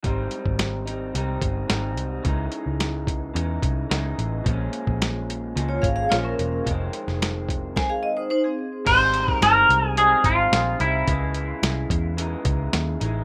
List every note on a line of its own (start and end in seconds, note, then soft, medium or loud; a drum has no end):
0.03 0.26 G#1 medium
0.03 0.86 G#2 medium
0.03 0.87 G3 medium
0.03 0.87 C4 medium
0.03 0.85 D#4 medium
0.03 kick medium
0.03 closed hi-hat medium
0.31 closed hi-hat soft
0.46 1.11 G#1 medium
0.46 kick medium
0.59 snare medium
0.59 closed hi-hat medium
0.86 1.15 C4 soft
0.86 1.14 D#4 soft
0.86 closed hi-hat medium
0.90 1.14 G3 soft
1.14 1.37 C2 medium
1.14 1.67 G#2 soft
1.14 1.69 G3 medium
1.14 1.70 C4 medium
1.14 1.72 D#4 medium
1.14 closed hi-hat medium
1.42 1.64 G1 medium
1.42 kick medium
1.42 closed hi-hat medium
1.68 1.97 G#1 medium
1.68 2.24 G#2 medium
1.68 2.25 G3 medium
1.68 2.25 C4 medium
1.68 2.28 D#4 medium
1.68 snare medium
1.68 closed hi-hat medium
1.97 2.19 C2 medium
1.97 closed hi-hat medium
2.23 2.47 C#2 medium
2.23 3.33 C#3 medium
2.23 3.34 E3 medium
2.23 kick medium
2.23 closed hi-hat medium
2.27 3.36 G#3 medium
2.27 3.36 D#4 medium
2.52 closed hi-hat soft
2.66 3.32 C#2 medium
2.80 snare medium
2.80 closed hi-hat medium
3.07 kick medium
3.07 closed hi-hat medium
3.34 3.57 E2 medium
3.34 3.88 C#3 medium
3.34 3.90 E3 medium
3.34 3.92 G#3 medium
3.34 3.92 D#4 medium
3.34 closed hi-hat medium
3.62 3.85 C2 medium
3.62 kick medium
3.62 closed hi-hat medium
3.90 4.13 C#2 medium
3.90 4.44 C#3 medium
3.90 4.46 E3 medium
3.90 4.47 G#3 medium
3.90 4.47 D#4 medium
3.90 snare medium
3.90 closed hi-hat medium
4.18 4.40 A1 medium
4.18 closed hi-hat medium
4.44 4.68 A#1 loud
4.44 5.54 A#2 medium
4.44 5.57 F3 medium
4.44 kick medium
4.44 closed hi-hat medium
4.48 5.58 G#3 medium
4.48 5.58 C#4 medium
4.73 closed hi-hat medium
4.87 5.53 A#1 medium
4.87 kick medium
5.02 snare medium
5.02 closed hi-hat medium
5.30 closed hi-hat medium
5.56 5.78 C#2 medium
5.56 6.09 A#2 medium
5.56 6.12 F3 medium
5.56 6.13 G#3 medium
5.56 6.13 C#4 medium
5.56 closed hi-hat medium
5.69 5.83 F4 medium
5.69 5.82 C#5 medium
5.82 6.05 G#1 medium
5.82 5.95 G#4 medium
5.82 5.95 F5 medium
5.82 kick medium
5.82 closed hi-hat medium
5.96 6.10 G#4 medium
5.96 6.10 F5 medium
6.09 6.33 A#1 medium
6.09 6.66 A#2 medium
6.09 6.66 F3 medium
6.09 6.68 G#3 medium
6.09 6.24 F4 medium
6.09 6.23 C#5 medium
6.09 snare medium
6.09 closed hi-hat medium
6.14 6.68 C#4 medium
6.23 6.64 C#4 medium
6.23 6.63 A#4 medium
6.39 6.61 E1 medium
6.39 closed hi-hat medium
6.64 6.89 F1 medium
6.64 7.76 F2 medium
6.64 8.29 D#3 medium
6.64 8.29 G#3 medium
6.64 kick medium
6.64 closed hi-hat medium
6.70 8.29 C4 medium
6.93 closed hi-hat medium
7.08 7.73 F1 medium
7.08 snare soft
7.22 snare medium
7.22 closed hi-hat medium
7.49 kick medium
7.49 closed hi-hat medium
7.76 7.90 C5 medium
7.76 7.89 G#5 medium
7.76 kick medium
7.76 snare medium
7.90 8.03 G#4 medium
7.90 8.03 F5 medium
8.03 8.17 D#5 medium
8.17 8.30 D#4 medium
8.17 8.29 C5 medium
8.30 8.45 D#4 medium
8.30 8.44 C5 medium
8.44 8.85 C4 soft
8.44 8.84 G#4 medium
8.85 9.31 G#1 medium
8.85 9.95 G#2 medium
8.85 9.96 G3 medium
8.85 9.32 C5 medium
8.85 kick medium
8.85 closed hi-hat medium
8.85 crash medium
8.89 9.98 C4 medium
8.89 9.99 D#4 medium
9.14 closed hi-hat medium
9.28 9.42 A#4 medium
9.28 kick medium
9.41 9.64 G1 medium
9.41 9.87 A#4 medium
9.41 snare medium
9.41 closed hi-hat medium
9.69 10.14 C2 medium
9.69 closed hi-hat medium
9.87 9.97 G#4 medium
9.96 10.79 G#2 medium
9.96 10.80 G3 medium
9.96 10.80 C4 medium
9.96 10.79 D#4 medium
9.96 10.26 G#4 medium
9.96 closed hi-hat medium
10.24 10.47 G#1 medium
10.24 10.80 F4 medium
10.24 kick medium
10.24 closed hi-hat medium
10.52 10.74 A#1 medium
10.52 snare loud
10.52 closed hi-hat medium
10.79 11.02 C2 medium
10.79 11.08 G3 soft
10.79 11.08 C4 soft
10.79 11.07 D#4 soft
10.79 12.42 E4 medium
10.79 closed hi-hat medium
11.06 11.52 C#2 medium
11.06 12.16 C#3 medium
11.06 12.18 E3 medium
11.06 kick medium
11.06 closed hi-hat medium
11.11 12.19 G#3 medium
11.34 closed hi-hat medium
11.63 11.85 C2 medium
11.63 snare medium
11.63 closed hi-hat medium
11.90 12.34 E2 medium
11.90 kick medium
11.90 closed hi-hat medium
12.17 13.00 C#3 medium
12.17 13.01 E3 medium
12.17 13.02 G#3 medium
12.17 12.99 D#4 medium
12.17 closed hi-hat medium
12.45 12.68 C#2 medium
12.45 kick medium
12.45 closed hi-hat medium
12.73 12.96 D#2 medium
12.73 snare medium
12.73 closed hi-hat medium
13.00 13.23 A1 medium
13.00 13.24 G#3 soft
13.00 13.24 D#4 medium
13.00 closed hi-hat medium
13.05 13.24 E3 soft